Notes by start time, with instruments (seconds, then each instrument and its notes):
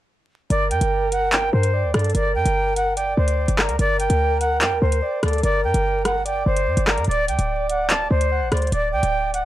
0.50 808-style bass G1, soft synth lead A#4, flute D5, closed hi-hat
0.71 808-style bass G2, flute G5, closed hi-hat
0.81 808-style bass G1, closed hi-hat
1.12 flute F#5, closed hi-hat
1.32 flute G5, clap, closed hi-hat
1.53 808-style bass G2, flute C5
1.63 closed hi-hat
1.74 soft synth lead D5
1.84 808-style bass D2
1.94 808-style bass G2, soft synth lead A4, flute D5, cross-stick, closed hi-hat
1.99 closed hi-hat
2.04 closed hi-hat
2.10 closed hi-hat
2.15 808-style bass G1, soft synth lead A#4, flute D5, closed hi-hat
2.35 808-style bass G2, flute G5
2.46 808-style bass G1, closed hi-hat
2.76 flute F#5, closed hi-hat
2.96 soft synth lead D5, flute G5, closed hi-hat
3.17 808-style bass D2, flute C5
3.28 closed hi-hat
3.48 808-style bass G1, closed hi-hat
3.59 flute A#4, cross-stick, clap
3.69 808-style bass D2, closed hi-hat
3.79 808-style bass G1, soft synth lead A#4, flute D5, closed hi-hat
3.99 flute G5, closed hi-hat
4.10 808-style bass D2, closed hi-hat
4.40 flute F#5, closed hi-hat
4.61 808-style bass G2, flute G5, clap, closed hi-hat
4.72 808-style bass D2
4.81 808-style bass D2, flute C5
4.92 closed hi-hat
5.02 soft synth lead D5
5.23 808-style bass D2, soft synth lead A4, flute D5, cross-stick, closed hi-hat
5.28 closed hi-hat
5.33 closed hi-hat
5.38 closed hi-hat
5.43 808-style bass G1, soft synth lead A#4, flute D5, closed hi-hat
5.64 808-style bass G2, flute G5
5.74 808-style bass G1, closed hi-hat
6.05 flute F#5, cross-stick, closed hi-hat
6.25 soft synth lead D5, flute G5, closed hi-hat
6.46 808-style bass G1, flute C5
6.56 closed hi-hat
6.67 808-style bass G2
6.77 808-style bass G1, closed hi-hat
6.87 flute A#4, cross-stick, clap
6.98 808-style bass G2, closed hi-hat
7.04 808-style bass D1, flute D5, soft synth lead D5, closed hi-hat
7.11 closed hi-hat
7.28 808-style bass D2, flute G5, closed hi-hat
7.39 808-style bass D1, closed hi-hat
7.69 flute F#5, closed hi-hat
7.90 flute A5, clap, closed hi-hat
8.10 808-style bass D2, flute C5
8.21 closed hi-hat
8.32 soft synth lead F#5
8.41 808-style bass A1
8.52 808-style bass D2, soft synth lead C5, flute D5, cross-stick, closed hi-hat
8.57 closed hi-hat
8.62 closed hi-hat
8.67 closed hi-hat
8.72 808-style bass D1, flute D5, soft synth lead D5, closed hi-hat
8.93 808-style bass D2, flute G5
9.03 808-style bass D1, closed hi-hat
9.34 flute F#5, closed hi-hat